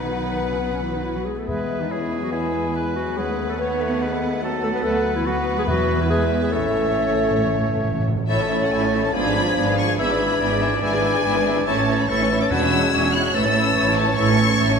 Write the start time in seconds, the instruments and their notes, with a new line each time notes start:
Already playing: double bass section B1, cello section D#3, viola section F#3, french horn section F#3 B3, bassoon B3, clarinet D#4, oboe B4, violin section B4 F#5, flute F#5
0.49 cello section C#3, clarinet C#4
0.60 cello section B2, clarinet B3
0.71 cello section C#3, clarinet C#4
0.82 cello section E3, clarinet E4
0.93 cello section D#3, clarinet D#4
1.04 cello section E3, clarinet E4
1.15 cello section F#3, clarinet F#4
1.25 cello section G#3, clarinet G#4
1.37 cello section A3, clarinet A4
1.47 double bass section E2, timpani E2, viola section G#3, cello section G#3, french horn section G#3, bassoon B3, clarinet G#4, violin section B4 E5, oboe B4, flute E5
1.80 cello section D#3, clarinet D#4
1.90 cello section E3, bassoon C#4, clarinet E4, oboe G#4, flute E5
2.22 cello section F#3, clarinet F#4
2.32 cello section E3, bassoon B3, clarinet E4, oboe G#4, flute G#5
2.54 bassoon B3
2.76 oboe B4, flute G#5
2.96 cello section F#3, clarinet F#4
3.17 double bass section D#2, cello section G#3, viola section A3, french horn section A3 B3, bassoon C#4, clarinet G#4, oboe B4, violin section F#5, flute F#5
3.49 cello section A3, clarinet A4
3.59 bassoon B3, cello section B3, clarinet B4, oboe C#5, flute F#5
3.81 bassoon A3
4.01 bassoon G#3, oboe B4
4.43 bassoon F#3, oboe A4, flute A5
4.63 cello section A3, clarinet A4
4.75 cello section B3, clarinet B4
4.83 double bass section D2, french horn section F#3, cello section A3, bassoon B3, viola section B3, clarinet A4, oboe B4, violin section B4, flute F#5
5.16 cello section E3, clarinet E4
5.26 cello section F#3, bassoon B3, clarinet F#4, oboe B4, flute F#5
5.57 cello section G#3, clarinet G#4
5.67 timpani E2, double bass section E2, french horn section E3, cello section F#3, bassoon B3, clarinet F#4, oboe B4, violin section E5, flute E5
5.99 cello section E3, clarinet E4
6.10 cello section G#3, bassoon B3, clarinet G#4, oboe B4, flute E5
6.42 cello section G#3, clarinet G#4
6.52 double bass section A1, timpani A2, viola section A3, bassoon A3, cello section A3, french horn section C#4, clarinet A4, violin section C#5, oboe C#5, flute E5
6.61 timpani A2
6.69 timpani A2
6.77 timpani A2
6.84 timpani A2
6.92 timpani A2
7.07 timpani A2
7.15 timpani A2
7.23 timpani A2
7.30 timpani A2
7.38 timpani A2
7.46 timpani A2
7.53 timpani A2
7.60 timpani A2
7.69 timpani A2
7.77 timpani A2
7.84 timpani A2
7.92 timpani A2
7.99 timpani A2
8.08 timpani A2
8.16 timpani A2
8.28 double bass section A1, cello section A2, french horn section E3 C#4, viola section A3 E4, bassoon A3, violin section C#5 E5, clarinet C#5, flute A6
8.40 viola section C#4, violin section A4 C#5
8.50 viola section A3 E4, violin section C#5 E5
8.61 viola section C#4, violin section A4 C#5 F#5
8.71 double bass section A1, cello section A2, viola section A3 E4, violin section C#5 E5 G#5
8.82 viola section C#4, violin section A4 C#5
8.93 viola section A3 E4, violin section C#5 E5
9.03 viola section C#4, violin section A4 C#5 A5
9.13 double bass section G#1, cello section G#2, bassoon F3, french horn section F3 D4, viola section B3 F4, violin section G#4 D5 B5, clarinet D5, oboe G#5, flute G#6
9.23 viola section D4 G#4, violin section B4 F5
9.35 viola section B3 F4, violin section G#4 D5
9.45 viola section D4 G#4, violin section B4 F5
9.56 double bass section G#1, cello section G#2, viola section B3 F4, violin section G#4 D5
9.67 viola section D4 G#4, violin section B4 F5
9.77 viola section B3 F4, violin section G#4 D5 C#6
9.87 viola section D4 G#4, violin section B4 F5
9.98 double bass section G#1, cello section G#2, french horn section E3 D4, bassoon E3, viola section B3 E4, violin section G#4 E5 B5, clarinet D5, oboe E5, flute G#6
10.09 viola section D4 G#4, violin section B4 D5
10.20 viola section B3 E4, violin section G#4 E5
10.31 viola section D4 G#4, violin section B4 D5
10.40 double bass section G#1, cello section G#2, viola section B3 E4, violin section G#4 E5, oboe D5
10.51 viola section D4 G#4, violin section B4 D5
10.61 viola section B3 E4, violin section G#4 E5
10.73 viola section D4 G#4, violin section B4 D5
10.82 double bass section G#1, cello section G#2, bassoon E3, french horn section E3 D4, viola section B3 E4, violin section G#4 E5 G#5, clarinet D5, flute G#6
10.93 viola section D4 G#4, violin section B4 D5
11.03 viola section B3 E4, violin section G#4 E5
11.14 viola section D4 G#4, violin section B4 D5
11.24 double bass section G#1, cello section G#2, viola section B3 E4, violin section G#4 E5
11.35 viola section D4 G#4, violin section B4 D5
11.46 viola section B3 E4, violin section G#4 E5
11.56 viola section D4 G#4, violin section B4 D5
11.66 double bass section A1, cello section A2, french horn section E3 C#4, bassoon E3, viola section A3 E4, violin section C#5 E5 A5, clarinet C#5, oboe C#5, flute A6
11.77 viola section C#4, violin section A4 C#5
11.88 viola section A3 E4, violin section C#5 E5
11.98 viola section C#4, violin section A4 C#5 B5
12.08 double bass section A1, cello section A2, french horn section E3 C#4, bassoon E3, viola section A3 E4, oboe A4, clarinet C#5, violin section C#5 E5 C#6, flute A6
12.19 viola section C#4, violin section A4 C#5
12.29 viola section A3 E4, violin section C#5 E5
12.40 viola section C#4, violin section A4 C#5 D6
12.50 double bass section E1, timpani E2, cello section E2, bassoon F#3, french horn section G#3 C#4, viola section D4 E4, violin section F#4 F#5 E6, oboe B4, clarinet C#5, flute G#6
12.61 viola section C#4 D4, violin section G#4 E5
12.71 viola section D4 E4, violin section F#4 F#5
12.82 viola section C#4 D4, violin section G#4 E5
12.91 double bass section E1, cello section E2, viola section D4 E4, violin section F#4 F#5, oboe C#5
13.02 viola section C#4 D4, violin section G#4 E5
13.13 viola section D4 E4, violin section F#4 F#5 F#6
13.22 viola section C#4 D4, violin section G#4 E5
13.33 double bass section A1, cello section A2, french horn section E3 C#4, bassoon E3, viola section A3 E4, oboe A4, violin section C#5 E5 E6, clarinet C#5, flute A6
13.44 viola section C#4, violin section A4 C#5
13.53 viola section A3 E4, violin section C#5 E5
13.64 viola section C#4, violin section A4 C#5
13.74 double bass section A1, cello section A2, viola section A3 E4, violin section C#5 E5, oboe C#5
13.84 viola section C#4, violin section A4 C#5
13.95 viola section A3 E4, violin section C#5 E5 A5
14.07 viola section C#4, violin section A4 C#5
14.15 double bass section A1, cello section A2, french horn section E3 C#4, bassoon E3, viola section A3 E4, clarinet C#5, violin section C#5 E5 C#6, flute A6
14.27 viola section C#4, violin section A4 C#5
14.38 viola section A3 E4, violin section C#5 E5
14.49 viola section C#4, violin section A4 C#5
14.58 double bass section A1, cello section A2, viola section A3 E4, violin section C#5 E5
14.69 viola section C#4, violin section A4 C#5